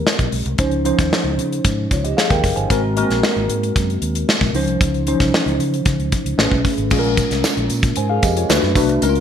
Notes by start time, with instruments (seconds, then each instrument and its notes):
Already playing: tine electric piano G#3 C4 G4 A#4
0.07 snare
0.19 fingered electric bass A#1, kick, closed hi-hat
0.32 fingered electric bass B1, open hi-hat
0.46 fingered electric bass C2, closed hi-hat
0.58 fingered electric bass C#2, tine electric piano F3 C#4 D#4 C5, kick, closed hi-hat
0.71 closed hi-hat
0.85 tine electric piano F3 C#4 D#4 C5, closed hi-hat
0.99 fingered electric bass D#2, kick, snare, closed hi-hat
1.13 snare
1.24 fingered electric bass C#2
1.37 fingered electric bass C#3, closed hi-hat
1.53 closed hi-hat
1.64 fingered electric bass G#2, kick, closed hi-hat
1.91 fingered electric bass C#2, tine electric piano F4 C#5, kick, closed hi-hat
2.04 tine electric piano G4 D#5, closed hi-hat
2.17 tine electric piano G#4 F5, snare
2.30 fingered electric bass D#2, tine electric piano A#4 G5, kick, closed hi-hat
2.44 fingered electric bass F#1, kick, open hi-hat
2.56 fingered electric bass G1, tine electric piano C5 G#5, closed hi-hat
2.70 fingered electric bass G#1, tine electric piano G#3 C4 F#4 A#4, kick, closed hi-hat
2.96 tine electric piano G#3 A#3 F#4 A#4, closed hi-hat
3.03 tine electric piano C4
3.10 fingered electric bass A#1, snare, closed hi-hat
3.23 snare
3.36 fingered electric bass G#1
3.48 fingered electric bass G#2, closed hi-hat
3.63 closed hi-hat
3.76 fingered electric bass F#2, kick, closed hi-hat
3.90 closed hi-hat
4.02 fingered electric bass D#2, closed hi-hat
4.15 closed hi-hat
4.29 snare
4.41 fingered electric bass A#1, kick, snare
4.53 fingered electric bass C#2, tine electric piano F3 C#4 D#4 C5, open hi-hat
4.67 fingered electric bass C2, closed hi-hat
4.81 fingered electric bass C#2, kick, closed hi-hat
4.94 closed hi-hat
5.07 tine electric piano E3 C#4 D#4 C5, closed hi-hat
5.14 tine electric piano F3
5.20 fingered electric bass C2, kick, snare, closed hi-hat
5.34 snare
5.46 fingered electric bass C#2, closed hi-hat
5.59 fingered electric bass C#3, closed hi-hat
5.74 closed hi-hat
5.85 fingered electric bass C#3, kick, closed hi-hat
5.99 fingered electric bass C#2, closed hi-hat
6.12 kick, closed hi-hat
6.25 fingered electric bass C#2, closed hi-hat
6.38 fingered electric bass A1, tine electric piano A3 C#4 G#4 B4, snare
6.51 fingered electric bass B1, kick
6.65 kick, open hi-hat
6.78 fingered electric bass G#1, closed hi-hat
6.90 fingered electric bass A#1, tine electric piano G#3 C#4 F4 G#4, kick, crash, tambourine
6.99 tine electric piano A#4
7.04 closed hi-hat
7.17 kick, closed hi-hat, tambourine
7.31 fingered electric bass C2, snare, closed hi-hat
7.44 snare, tambourine
7.57 fingered electric bass A#1, closed hi-hat
7.70 fingered electric bass A#2, closed hi-hat, tambourine
7.83 kick, closed hi-hat
7.96 fingered electric bass G#2, tine electric piano C5 G#5, closed hi-hat
8.10 tine electric piano G#4 F5
8.23 fingered electric bass F2, tine electric piano G4 D#5, kick, closed hi-hat, tambourine
8.37 tine electric piano F4 C#5, closed hi-hat
8.49 fingered electric bass D2, tine electric piano A3 D4 F#4 B4, snare, tambourine
8.63 fingered electric bass F#2, snare
8.75 fingered electric bass B1, tine electric piano A3 D4 F#4 B4, kick, open hi-hat, tambourine
8.89 fingered electric bass C2, closed hi-hat
9.02 fingered electric bass C#2, tine electric piano G#3 C#4 D#4 A#4, closed hi-hat, tambourine
9.09 tine electric piano F4
9.15 closed hi-hat